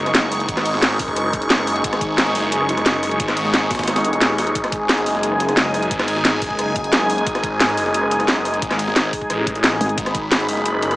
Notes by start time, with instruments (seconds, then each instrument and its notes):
Already playing: detuned saw bass F#1, analog synth pad G#3 D#4 G#4 C#6
0.06 cross-stick, snare, closed hi-hat
0.15 snare, closed hi-hat
0.32 cross-stick, closed hi-hat, open hi-hat
0.40 closed hi-hat
0.49 detuned saw bass G#1, kick, closed hi-hat
0.57 cross-stick, snare, closed hi-hat
0.66 closed hi-hat, open hi-hat
0.74 snare
0.82 snare, closed hi-hat
0.99 detuned saw bass F#1, kick, closed hi-hat, open hi-hat
1.08 kick
1.16 cross-stick, closed hi-hat
1.33 kick, closed hi-hat
1.42 closed hi-hat
1.50 snare, closed hi-hat
1.59 cross-stick
1.67 closed hi-hat, open hi-hat
1.76 closed hi-hat
1.84 detuned saw bass G#1, kick, closed hi-hat
1.93 cross-stick, snare, closed hi-hat
2.01 kick, closed hi-hat
2.18 snare, closed hi-hat
2.27 closed hi-hat
2.35 detuned saw bass F#1, closed hi-hat, open hi-hat
2.44 snare
2.52 closed hi-hat
2.60 cross-stick
2.69 snare, closed hi-hat
2.77 cross-stick, snare, closed hi-hat
2.86 snare, closed hi-hat
3.03 cross-stick, closed hi-hat, open hi-hat
3.11 closed hi-hat
3.20 detuned saw bass G#1, kick, snare, closed hi-hat
3.28 cross-stick, snare, closed hi-hat
3.37 closed hi-hat, open hi-hat
3.45 snare
3.54 snare, closed hi-hat
3.71 detuned saw bass G#1, kick, snare, closed hi-hat, open hi-hat
3.75 snare, closed hi-hat
3.79 kick, snare, closed hi-hat
3.83 snare, closed hi-hat
3.88 cross-stick, snare, closed hi-hat
3.96 snare, closed hi-hat
4.04 closed hi-hat
4.13 closed hi-hat
4.21 detuned saw bass D#1, snare, closed hi-hat
4.30 cross-stick
4.38 snare, closed hi-hat, open hi-hat
4.47 closed hi-hat
4.55 detuned saw bass G#1, analog synth pad G#5, kick, closed hi-hat
4.64 cross-stick, snare, closed hi-hat
4.72 kick, closed hi-hat
4.89 snare, closed hi-hat
4.98 closed hi-hat
5.06 detuned saw bass F#1, closed hi-hat, open hi-hat
5.15 snare
5.23 closed hi-hat
5.32 cross-stick
5.40 snare, closed hi-hat
5.49 cross-stick, snare, closed hi-hat
5.57 snare, closed hi-hat
5.74 cross-stick, closed hi-hat, open hi-hat
5.83 closed hi-hat
5.91 detuned saw bass G#1, kick, closed hi-hat
5.99 cross-stick, snare, closed hi-hat
6.08 closed hi-hat, open hi-hat
6.16 snare
6.25 snare, closed hi-hat
6.42 detuned saw bass F#1, kick, closed hi-hat, open hi-hat
6.50 kick
6.59 cross-stick, closed hi-hat
6.76 kick, closed hi-hat
6.84 closed hi-hat
6.93 snare, closed hi-hat
7.01 cross-stick
7.10 closed hi-hat, open hi-hat
7.18 closed hi-hat
7.27 detuned saw bass G#1, kick, closed hi-hat
7.35 cross-stick, snare, closed hi-hat
7.43 kick, closed hi-hat
7.60 snare, closed hi-hat
7.69 closed hi-hat
7.77 detuned saw bass F#1, closed hi-hat, open hi-hat
7.86 snare
7.94 closed hi-hat
8.03 cross-stick
8.11 snare, closed hi-hat
8.20 cross-stick, snare, closed hi-hat
8.28 snare, closed hi-hat
8.45 cross-stick, closed hi-hat, open hi-hat
8.54 closed hi-hat
8.62 detuned saw bass G#1, kick, closed hi-hat
8.71 cross-stick, snare, closed hi-hat
8.79 closed hi-hat, open hi-hat
8.88 snare
8.96 snare, closed hi-hat
9.13 kick, closed hi-hat, open hi-hat
9.21 kick
9.30 detuned saw bass A1, cross-stick, closed hi-hat
9.47 kick, closed hi-hat
9.55 closed hi-hat
9.64 snare, closed hi-hat
9.72 cross-stick
9.81 wobble bass G#1, closed hi-hat, open hi-hat
9.89 closed hi-hat
9.98 detuned saw bass G#1, analog synth pad B5, kick, closed hi-hat
10.06 cross-stick, snare, closed hi-hat
10.15 kick, closed hi-hat
10.32 snare, closed hi-hat
10.40 closed hi-hat
10.49 detuned saw bass F#1, closed hi-hat, open hi-hat
10.57 snare
10.66 closed hi-hat
10.74 cross-stick
10.82 snare, closed hi-hat
10.91 cross-stick, snare, closed hi-hat